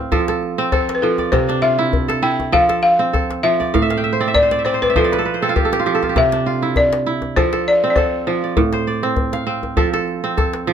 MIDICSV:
0, 0, Header, 1, 4, 480
1, 0, Start_track
1, 0, Tempo, 603015
1, 1055, Time_signature, 4, 2, 24, 8
1, 8541, End_track
2, 0, Start_track
2, 0, Title_t, "Balafon"
2, 0, Program_c, 0, 12
2, 0, Note_on_c, 0, 69, 85
2, 575, Note_on_c, 0, 72, 83
2, 623, Note_off_c, 0, 69, 0
2, 750, Note_off_c, 0, 72, 0
2, 754, Note_on_c, 0, 71, 64
2, 810, Note_off_c, 0, 71, 0
2, 813, Note_on_c, 0, 69, 77
2, 1050, Note_on_c, 0, 72, 94
2, 1061, Note_off_c, 0, 69, 0
2, 1290, Note_on_c, 0, 76, 105
2, 1300, Note_off_c, 0, 72, 0
2, 1741, Note_off_c, 0, 76, 0
2, 1773, Note_on_c, 0, 79, 93
2, 1882, Note_off_c, 0, 79, 0
2, 2014, Note_on_c, 0, 77, 114
2, 2240, Note_off_c, 0, 77, 0
2, 2249, Note_on_c, 0, 77, 106
2, 2733, Note_on_c, 0, 76, 85
2, 2749, Note_off_c, 0, 77, 0
2, 3184, Note_off_c, 0, 76, 0
2, 3459, Note_on_c, 0, 74, 114
2, 3682, Note_off_c, 0, 74, 0
2, 3700, Note_on_c, 0, 72, 80
2, 3833, Note_off_c, 0, 72, 0
2, 3838, Note_on_c, 0, 71, 87
2, 3885, Note_off_c, 0, 71, 0
2, 3960, Note_on_c, 0, 69, 79
2, 4398, Note_off_c, 0, 69, 0
2, 4918, Note_on_c, 0, 76, 108
2, 5389, Note_on_c, 0, 74, 99
2, 5403, Note_off_c, 0, 76, 0
2, 5832, Note_off_c, 0, 74, 0
2, 5862, Note_on_c, 0, 72, 99
2, 6108, Note_off_c, 0, 72, 0
2, 6112, Note_on_c, 0, 74, 97
2, 6281, Note_off_c, 0, 74, 0
2, 6291, Note_on_c, 0, 74, 69
2, 6333, Note_on_c, 0, 72, 84
2, 6341, Note_off_c, 0, 74, 0
2, 6573, Note_off_c, 0, 72, 0
2, 6583, Note_on_c, 0, 72, 69
2, 8466, Note_off_c, 0, 72, 0
2, 8541, End_track
3, 0, Start_track
3, 0, Title_t, "Kora"
3, 0, Program_c, 1, 46
3, 0, Note_on_c, 1, 45, 78
3, 0, Note_on_c, 1, 60, 67
3, 0, Note_on_c, 1, 74, 69
3, 0, Note_on_c, 1, 77, 69
3, 93, Note_on_c, 1, 53, 81
3, 96, Note_on_c, 1, 69, 70
3, 132, Note_off_c, 1, 45, 0
3, 225, Note_off_c, 1, 69, 0
3, 228, Note_on_c, 1, 69, 62
3, 251, Note_off_c, 1, 74, 0
3, 461, Note_off_c, 1, 60, 0
3, 464, Note_on_c, 1, 60, 90
3, 536, Note_off_c, 1, 77, 0
3, 574, Note_off_c, 1, 69, 0
3, 577, Note_on_c, 1, 69, 73
3, 811, Note_off_c, 1, 53, 0
3, 820, Note_on_c, 1, 53, 76
3, 946, Note_on_c, 1, 74, 61
3, 1056, Note_on_c, 1, 48, 87
3, 1094, Note_off_c, 1, 53, 0
3, 1183, Note_on_c, 1, 62, 69
3, 1292, Note_on_c, 1, 65, 68
3, 1421, Note_on_c, 1, 64, 84
3, 1626, Note_off_c, 1, 69, 0
3, 1659, Note_on_c, 1, 69, 71
3, 1768, Note_off_c, 1, 64, 0
3, 1771, Note_on_c, 1, 64, 79
3, 1819, Note_off_c, 1, 65, 0
3, 1828, Note_off_c, 1, 74, 0
3, 1897, Note_off_c, 1, 60, 0
3, 2009, Note_on_c, 1, 53, 87
3, 2011, Note_off_c, 1, 69, 0
3, 2014, Note_on_c, 1, 69, 75
3, 2056, Note_off_c, 1, 48, 0
3, 2057, Note_off_c, 1, 64, 0
3, 2137, Note_off_c, 1, 69, 0
3, 2141, Note_on_c, 1, 69, 62
3, 2382, Note_on_c, 1, 60, 79
3, 2491, Note_off_c, 1, 69, 0
3, 2494, Note_on_c, 1, 69, 71
3, 2520, Note_off_c, 1, 62, 0
3, 2725, Note_off_c, 1, 53, 0
3, 2734, Note_on_c, 1, 53, 75
3, 2864, Note_on_c, 1, 74, 62
3, 2976, Note_on_c, 1, 45, 82
3, 2978, Note_on_c, 1, 77, 72
3, 3018, Note_off_c, 1, 53, 0
3, 3042, Note_on_c, 1, 76, 77
3, 3101, Note_off_c, 1, 77, 0
3, 3105, Note_on_c, 1, 77, 69
3, 3163, Note_on_c, 1, 79, 74
3, 3211, Note_off_c, 1, 76, 0
3, 3214, Note_on_c, 1, 76, 70
3, 3262, Note_off_c, 1, 77, 0
3, 3284, Note_on_c, 1, 72, 70
3, 3344, Note_off_c, 1, 60, 0
3, 3345, Note_off_c, 1, 74, 0
3, 3347, Note_on_c, 1, 60, 79
3, 3348, Note_on_c, 1, 74, 68
3, 3401, Note_off_c, 1, 76, 0
3, 3404, Note_on_c, 1, 76, 70
3, 3451, Note_off_c, 1, 74, 0
3, 3454, Note_on_c, 1, 74, 67
3, 3519, Note_off_c, 1, 72, 0
3, 3522, Note_on_c, 1, 72, 65
3, 3543, Note_off_c, 1, 69, 0
3, 3590, Note_off_c, 1, 74, 0
3, 3593, Note_on_c, 1, 74, 66
3, 3649, Note_off_c, 1, 76, 0
3, 3652, Note_on_c, 1, 76, 66
3, 3701, Note_off_c, 1, 60, 0
3, 3703, Note_off_c, 1, 74, 0
3, 3704, Note_on_c, 1, 60, 68
3, 3706, Note_on_c, 1, 74, 67
3, 3769, Note_off_c, 1, 72, 0
3, 3772, Note_on_c, 1, 72, 68
3, 3836, Note_off_c, 1, 74, 0
3, 3839, Note_on_c, 1, 74, 72
3, 3895, Note_off_c, 1, 76, 0
3, 3898, Note_on_c, 1, 76, 69
3, 3905, Note_off_c, 1, 79, 0
3, 3945, Note_off_c, 1, 72, 0
3, 3947, Note_on_c, 1, 53, 83
3, 3948, Note_on_c, 1, 72, 71
3, 3980, Note_off_c, 1, 45, 0
3, 4012, Note_off_c, 1, 74, 0
3, 4015, Note_on_c, 1, 74, 68
3, 4078, Note_on_c, 1, 71, 73
3, 4126, Note_off_c, 1, 60, 0
3, 4126, Note_off_c, 1, 72, 0
3, 4128, Note_on_c, 1, 69, 71
3, 4179, Note_off_c, 1, 71, 0
3, 4182, Note_on_c, 1, 71, 69
3, 4251, Note_on_c, 1, 72, 68
3, 4315, Note_off_c, 1, 69, 0
3, 4318, Note_on_c, 1, 60, 82
3, 4318, Note_on_c, 1, 69, 77
3, 4366, Note_off_c, 1, 71, 0
3, 4371, Note_on_c, 1, 65, 75
3, 4419, Note_off_c, 1, 76, 0
3, 4424, Note_on_c, 1, 67, 73
3, 4494, Note_off_c, 1, 69, 0
3, 4497, Note_on_c, 1, 69, 66
3, 4554, Note_off_c, 1, 67, 0
3, 4557, Note_on_c, 1, 67, 73
3, 4610, Note_off_c, 1, 65, 0
3, 4613, Note_on_c, 1, 65, 73
3, 4656, Note_off_c, 1, 53, 0
3, 4664, Note_off_c, 1, 67, 0
3, 4665, Note_on_c, 1, 53, 77
3, 4667, Note_on_c, 1, 67, 67
3, 4731, Note_off_c, 1, 69, 0
3, 4734, Note_on_c, 1, 69, 73
3, 4793, Note_off_c, 1, 65, 0
3, 4796, Note_on_c, 1, 65, 57
3, 4847, Note_off_c, 1, 67, 0
3, 4850, Note_on_c, 1, 67, 64
3, 4897, Note_off_c, 1, 74, 0
3, 4904, Note_on_c, 1, 48, 88
3, 4940, Note_off_c, 1, 53, 0
3, 5036, Note_on_c, 1, 62, 57
3, 5142, Note_off_c, 1, 65, 0
3, 5145, Note_on_c, 1, 65, 68
3, 5196, Note_off_c, 1, 72, 0
3, 5273, Note_on_c, 1, 64, 77
3, 5620, Note_off_c, 1, 64, 0
3, 5624, Note_on_c, 1, 64, 75
3, 5671, Note_off_c, 1, 65, 0
3, 5751, Note_off_c, 1, 60, 0
3, 5783, Note_off_c, 1, 69, 0
3, 5863, Note_on_c, 1, 53, 83
3, 5864, Note_on_c, 1, 69, 60
3, 5900, Note_off_c, 1, 48, 0
3, 5911, Note_off_c, 1, 64, 0
3, 5974, Note_off_c, 1, 67, 0
3, 5987, Note_off_c, 1, 69, 0
3, 5991, Note_on_c, 1, 69, 68
3, 6238, Note_on_c, 1, 60, 80
3, 6344, Note_off_c, 1, 69, 0
3, 6347, Note_on_c, 1, 69, 68
3, 6373, Note_off_c, 1, 62, 0
3, 6574, Note_off_c, 1, 53, 0
3, 6584, Note_on_c, 1, 53, 79
3, 6716, Note_on_c, 1, 74, 52
3, 6820, Note_on_c, 1, 45, 86
3, 6859, Note_off_c, 1, 53, 0
3, 6951, Note_on_c, 1, 72, 62
3, 7060, Note_off_c, 1, 74, 0
3, 7063, Note_on_c, 1, 74, 66
3, 7185, Note_off_c, 1, 60, 0
3, 7188, Note_on_c, 1, 60, 83
3, 7396, Note_off_c, 1, 69, 0
3, 7425, Note_on_c, 1, 77, 63
3, 7532, Note_off_c, 1, 60, 0
3, 7535, Note_on_c, 1, 60, 78
3, 7775, Note_on_c, 1, 53, 78
3, 7778, Note_on_c, 1, 69, 70
3, 7817, Note_off_c, 1, 45, 0
3, 7897, Note_off_c, 1, 72, 0
3, 7904, Note_off_c, 1, 69, 0
3, 7908, Note_on_c, 1, 69, 67
3, 7945, Note_off_c, 1, 74, 0
3, 8146, Note_off_c, 1, 60, 0
3, 8149, Note_on_c, 1, 60, 80
3, 8220, Note_off_c, 1, 77, 0
3, 8254, Note_off_c, 1, 69, 0
3, 8257, Note_on_c, 1, 69, 68
3, 8487, Note_off_c, 1, 53, 0
3, 8496, Note_on_c, 1, 53, 85
3, 8541, Note_off_c, 1, 53, 0
3, 8541, Note_off_c, 1, 60, 0
3, 8541, Note_off_c, 1, 69, 0
3, 8541, End_track
4, 0, Start_track
4, 0, Title_t, "Djembe"
4, 96, Note_on_c, 9, 62, 24
4, 96, Note_on_c, 9, 64, 75
4, 176, Note_off_c, 9, 62, 0
4, 176, Note_off_c, 9, 64, 0
4, 224, Note_on_c, 9, 62, 60
4, 304, Note_off_c, 9, 62, 0
4, 340, Note_on_c, 9, 62, 20
4, 420, Note_off_c, 9, 62, 0
4, 575, Note_on_c, 9, 62, 24
4, 575, Note_on_c, 9, 64, 71
4, 655, Note_off_c, 9, 62, 0
4, 655, Note_off_c, 9, 64, 0
4, 709, Note_on_c, 9, 62, 59
4, 789, Note_off_c, 9, 62, 0
4, 941, Note_on_c, 9, 63, 53
4, 1021, Note_off_c, 9, 63, 0
4, 1055, Note_on_c, 9, 64, 69
4, 1135, Note_off_c, 9, 64, 0
4, 1190, Note_on_c, 9, 62, 46
4, 1270, Note_off_c, 9, 62, 0
4, 1537, Note_on_c, 9, 64, 71
4, 1617, Note_off_c, 9, 64, 0
4, 1669, Note_on_c, 9, 62, 53
4, 1748, Note_off_c, 9, 62, 0
4, 1908, Note_on_c, 9, 62, 20
4, 1908, Note_on_c, 9, 63, 56
4, 1988, Note_off_c, 9, 62, 0
4, 1988, Note_off_c, 9, 63, 0
4, 2021, Note_on_c, 9, 62, 22
4, 2021, Note_on_c, 9, 64, 65
4, 2100, Note_off_c, 9, 62, 0
4, 2100, Note_off_c, 9, 64, 0
4, 2145, Note_on_c, 9, 62, 56
4, 2224, Note_off_c, 9, 62, 0
4, 2253, Note_on_c, 9, 62, 19
4, 2333, Note_off_c, 9, 62, 0
4, 2501, Note_on_c, 9, 62, 22
4, 2501, Note_on_c, 9, 64, 68
4, 2581, Note_off_c, 9, 62, 0
4, 2581, Note_off_c, 9, 64, 0
4, 2630, Note_on_c, 9, 62, 51
4, 2710, Note_off_c, 9, 62, 0
4, 2872, Note_on_c, 9, 63, 46
4, 2952, Note_off_c, 9, 63, 0
4, 2983, Note_on_c, 9, 64, 67
4, 3063, Note_off_c, 9, 64, 0
4, 3108, Note_on_c, 9, 62, 51
4, 3187, Note_off_c, 9, 62, 0
4, 3223, Note_on_c, 9, 62, 19
4, 3302, Note_off_c, 9, 62, 0
4, 3464, Note_on_c, 9, 64, 66
4, 3544, Note_off_c, 9, 64, 0
4, 3592, Note_on_c, 9, 62, 56
4, 3672, Note_off_c, 9, 62, 0
4, 3709, Note_on_c, 9, 62, 18
4, 3788, Note_off_c, 9, 62, 0
4, 3841, Note_on_c, 9, 63, 55
4, 3921, Note_off_c, 9, 63, 0
4, 3947, Note_on_c, 9, 62, 26
4, 3947, Note_on_c, 9, 64, 68
4, 4027, Note_off_c, 9, 62, 0
4, 4027, Note_off_c, 9, 64, 0
4, 4084, Note_on_c, 9, 62, 56
4, 4163, Note_off_c, 9, 62, 0
4, 4188, Note_on_c, 9, 62, 22
4, 4268, Note_off_c, 9, 62, 0
4, 4428, Note_on_c, 9, 64, 74
4, 4508, Note_off_c, 9, 64, 0
4, 4560, Note_on_c, 9, 62, 61
4, 4639, Note_off_c, 9, 62, 0
4, 4673, Note_on_c, 9, 62, 20
4, 4753, Note_off_c, 9, 62, 0
4, 4797, Note_on_c, 9, 63, 59
4, 4877, Note_off_c, 9, 63, 0
4, 4903, Note_on_c, 9, 64, 72
4, 4983, Note_off_c, 9, 64, 0
4, 5033, Note_on_c, 9, 62, 52
4, 5113, Note_off_c, 9, 62, 0
4, 5380, Note_on_c, 9, 64, 73
4, 5460, Note_off_c, 9, 64, 0
4, 5513, Note_on_c, 9, 62, 64
4, 5592, Note_off_c, 9, 62, 0
4, 5746, Note_on_c, 9, 62, 21
4, 5746, Note_on_c, 9, 63, 53
4, 5825, Note_off_c, 9, 62, 0
4, 5825, Note_off_c, 9, 63, 0
4, 5867, Note_on_c, 9, 62, 23
4, 5867, Note_on_c, 9, 64, 83
4, 5947, Note_off_c, 9, 62, 0
4, 5947, Note_off_c, 9, 64, 0
4, 5991, Note_on_c, 9, 62, 54
4, 6071, Note_off_c, 9, 62, 0
4, 6107, Note_on_c, 9, 62, 21
4, 6187, Note_off_c, 9, 62, 0
4, 6338, Note_on_c, 9, 62, 25
4, 6338, Note_on_c, 9, 64, 76
4, 6417, Note_off_c, 9, 62, 0
4, 6417, Note_off_c, 9, 64, 0
4, 6820, Note_on_c, 9, 64, 78
4, 6899, Note_off_c, 9, 64, 0
4, 6945, Note_on_c, 9, 62, 52
4, 7025, Note_off_c, 9, 62, 0
4, 7295, Note_on_c, 9, 64, 69
4, 7375, Note_off_c, 9, 64, 0
4, 7427, Note_on_c, 9, 62, 55
4, 7506, Note_off_c, 9, 62, 0
4, 7667, Note_on_c, 9, 62, 23
4, 7667, Note_on_c, 9, 63, 55
4, 7746, Note_off_c, 9, 62, 0
4, 7746, Note_off_c, 9, 63, 0
4, 7776, Note_on_c, 9, 62, 23
4, 7776, Note_on_c, 9, 64, 76
4, 7856, Note_off_c, 9, 62, 0
4, 7856, Note_off_c, 9, 64, 0
4, 7909, Note_on_c, 9, 62, 56
4, 7988, Note_off_c, 9, 62, 0
4, 8021, Note_on_c, 9, 62, 22
4, 8101, Note_off_c, 9, 62, 0
4, 8262, Note_on_c, 9, 62, 23
4, 8262, Note_on_c, 9, 64, 73
4, 8342, Note_off_c, 9, 62, 0
4, 8342, Note_off_c, 9, 64, 0
4, 8385, Note_on_c, 9, 62, 56
4, 8465, Note_off_c, 9, 62, 0
4, 8541, End_track
0, 0, End_of_file